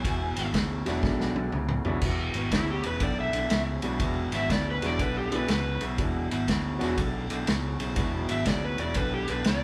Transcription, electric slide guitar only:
Already playing: G#5
2.53 E4
2.71 G4
2.86 B4
3.03 D5
3.20 E5
4.36 E5
4.52 D5
4.71 B4
4.86 D5
5.02 B4
5.17 G4
5.36 B4
5.53 B4
8.31 E5
8.47 D5
8.65 B4
8.79 D5
8.96 B4
9.14 G4
9.30 B4
9.48 D5

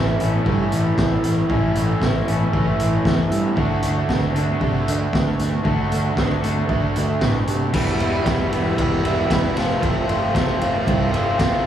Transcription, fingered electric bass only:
Already playing: A1
0.21 A1
0.46 G2
0.72 A1
0.97 A1
1.24 A1
1.50 A1
1.75 A1
2.02 A1
2.27 A1
2.53 A1
2.79 A1
3.05 E2
3.31 G2
3.57 D2
3.83 D2
4.10 D2
4.34 D2
4.61 C3
4.87 D2
5.13 D2
5.39 D2
5.65 D2
5.92 D2
6.17 D2
6.44 D2
6.69 D2
6.96 D2
7.22 A2
7.48 C3
7.74 E1
8.00 E1
8.26 E1
8.52 E1
8.79 E1
9.04 E1
9.30 E1
9.57 F1
9.83 F1
10.09 F1
10.35 F1
10.61 F1
10.87 C2
11.14 F1
11.40 F#1

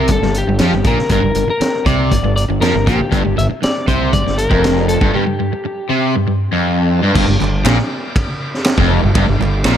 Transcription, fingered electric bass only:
0.09 G1
0.22 G1
0.47 G1
0.60 F2
0.72 G1
0.84 A#1
0.97 muted fingered electric bass stroke
1.10 G1
1.23 G1
1.35 G1
1.47 muted fingered electric bass stroke
1.60 muted fingered electric bass stroke
1.85 C2
2.12 G1
2.22 G1
2.48 G1
2.60 F2
2.74 G1
2.87 A#1
3.01 muted fingered electric bass stroke
3.12 G1
3.26 G1
3.38 G1
3.51 muted fingered electric bass stroke
3.64 muted fingered electric bass stroke
3.88 C2
4.13 G1
4.28 G1
4.51 F1
5.01 G1
7.15 G1
7.28 G1
7.41 G1
7.65 A#1
8.78 F1
9.03 G1
9.15 G1
9.28 G1
9.40 G1
9.65 A#1

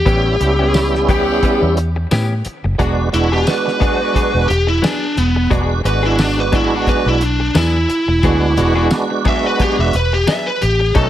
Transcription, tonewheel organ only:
0.05 G3 B3 C#4 E4
0.40 G3 B3 C#4 E4
0.58 G3 B3 C#4 E4
2.78 G#3 B3 D4 F#4
3.12 G#3 B3 D4 F#4
3.31 G#3 B3 D4 F#4
5.50 G#3 B3 D4 F#4
5.84 G#3 B3 D4 F#4
6.03 G#3 B3 D4 F#4
8.24 G#3 B3 D4 F#4
8.57 G#3 B3 D4 F#4
8.76 G#3 B3 D4 F#4
10.96 A3 C#4 D#4 F#4

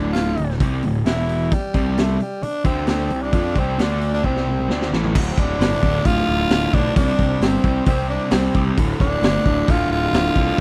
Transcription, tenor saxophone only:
Already playing: D4
0.13 F4
1.06 E4
1.53 G3
2.00 A3
2.22 G3
2.43 D4
2.66 C4
2.90 C4
3.23 D4
3.59 C4
3.83 D4
4.14 D4
4.25 C4
5.31 C4
5.39 D4
6.06 F4
6.74 D4
6.97 D4
7.44 C4
7.86 C4
8.10 D4
8.32 C4
9.01 D4
9.71 F4
9.92 F4

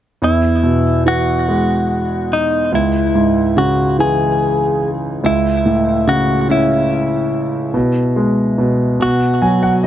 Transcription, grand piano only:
0.22 E2
0.63 B2
1.06 E3
1.48 G#3
2.72 C#2
3.15 G#2
3.57 C#3
3.99 E3
5.24 C#2
5.66 A2
6.07 C#3
6.49 C#4
7.74 B2
8.16 G#3
8.58 B2
9.00 B2
9.42 F#3 G#5
9.63 F#5
9.83 D#4 D#5

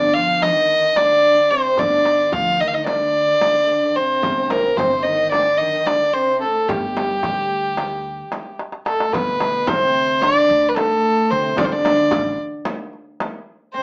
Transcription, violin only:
Already playing: D5
0.14 F5
0.42 D#5
0.97 D5
1.50 C5
1.79 D5
2.33 F5
2.60 D#5
2.67 F5
2.74 D#5
2.87 D5
3.96 C5
4.43 C5
4.50 A#4
4.77 C5
5.03 D#5
5.32 D5
5.57 D#5
5.86 D5
6.13 C5
6.41 A4
6.68 G4
8.87 A4
9.12 B4
9.68 C5
10.22 D5
10.69 B4
10.75 A4
11.31 C5
11.58 D5
11.65 C5
11.72 D5
13.74 C5

